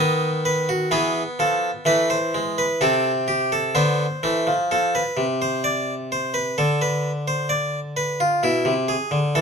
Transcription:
Already playing: D#3 B3 D#5
0.45 B4
0.69 F#4
0.91 E3 B3 G#4
1.39 F3 A4
1.85 E3 A3 B4
2.10 C5
2.34 G#3
2.58 B4
2.81 C3 C4 A4
3.28 G4
3.52 A4
3.75 D3 B3 C5
4.23 E3 A3
4.47 F3
4.71 F3 A4
4.95 B4
5.17 C3
5.42 C5
5.64 D5
6.12 C5
6.34 B4
6.58 D3 A4
6.82 B4
7.28 C5
7.49 D5
7.97 B4
8.20 F4
8.43 B2 E4
8.65 C3
8.88 G#4
9.11 D3
9.35 E3 A4

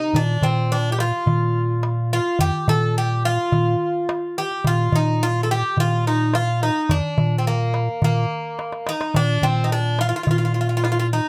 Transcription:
Already playing: C3 D#4
0.01 darbuka ka
0.13 A#2 D4, darbuka dum
0.41 A#2 C4, darbuka dum
0.72 D4
0.92 G4
0.99 F4, darbuka tek
1.13 darbuka ka
1.26 A#2, darbuka dum
1.83 darbuka tek
2.13 F4
2.39 F2 G4, darbuka dum
2.68 A#2 A4, darbuka dum
2.98 G4
3.25 F4
3.52 A#2, darbuka dum
4.09 darbuka tek
4.38 G4
4.51 darbuka ka
4.64 A#2 F4, darbuka dum
4.92 A#2 D#4, darbuka dum
5.23 F4
5.43 A4
5.51 G4
5.64 darbuka ka
5.77 A#2 F4, darbuka dum
6.07 D#4
6.34 F4, darbuka tek
6.63 D#4
6.89 F2 D4, darbuka dum
7.18 A#2, darbuka dum
7.38 C4
7.47 A#3
7.74 darbuka tek
7.88 darbuka ka
8.02 A#2 A#3, darbuka dum
8.31 darbuka ka
8.59 darbuka tek
8.72 darbuka ka
8.87 D#4, darbuka tek
9.01 darbuka ka
9.14 A#2 D4, darbuka dum
9.42 A#2 C4, darbuka dum
9.64 D#4
9.72 D4
9.99 F4, darbuka tek
10.09 F4
10.13 F4, darbuka ka
10.23 A#2 F4, darbuka dum
10.31 F4
10.38 F4
10.45 F4
10.54 F4
10.61 F4
10.69 F4
10.77 F4
10.84 F4, darbuka tek
10.92 F4
10.99 F4
11.13 D#4

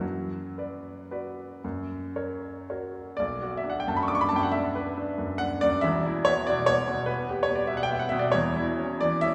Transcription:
Already playing: F#2
0.01 F#3
0.58 B4 D5
1.11 F#4 B4 D5
1.64 F#2
2.16 A#4 C#5
2.70 F#4 A#4 C#5
3.17 B1 D5
3.42 F#4
3.57 E5
3.64 D4
3.70 F#5
3.80 G5
3.87 F#2 A5
3.97 B5
4.03 C#6
4.08 D4 D6
4.15 C#6
4.21 B5
4.29 A5
4.33 F#2 G5
4.43 F#5
4.52 D4 E5
4.75 B4
4.97 D4
5.18 F#2
5.38 D4 F#5
5.61 F#2 D5
5.81 E1 E2 E5
6.06 E4
6.25 B3 C#5
6.47 B2 D5
6.66 B3 C#5
6.88 B2
7.06 B3 B4
7.30 G4
7.43 C#5
7.49 B3
7.55 D5
7.67 B2 E5
7.77 F#5
7.83 G5
7.90 B3 E5
7.99 F#5
8.09 B2 E5
8.19 D5
8.32 E1 E2 C#5
8.56 E4
8.79 C#4
9.01 E3 D5
9.21 C#4 E5

